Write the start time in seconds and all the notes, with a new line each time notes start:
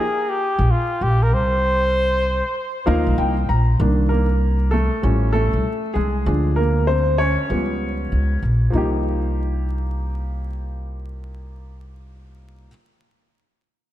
Already playing: G#4
0.29 G4
0.59 A#1
0.71 F4
1.01 A#1 G4
1.23 A#4
1.32 C2 C5
2.86 D2 F3 A#3 D#4 A#4 F5
3.06 C2
3.18 C2 G5
3.49 A#1 A#5
3.80 C2 D#3 A#3 D4
4.09 A#3 A#4
4.71 A3 A4
5.02 A1 F3 G3 C#4
5.33 A3 A4
5.53 C2
5.94 C2 G#3 G#4
6.26 D2 F3 G#3 D4
6.56 A#3 A#4
6.87 C4 C5
7.18 C#4 C#5
7.50 C#2 F3 G3 B3
8.12 C#2
8.42 A#1
8.70 C2 F3 A#3
8.75 D#4 G4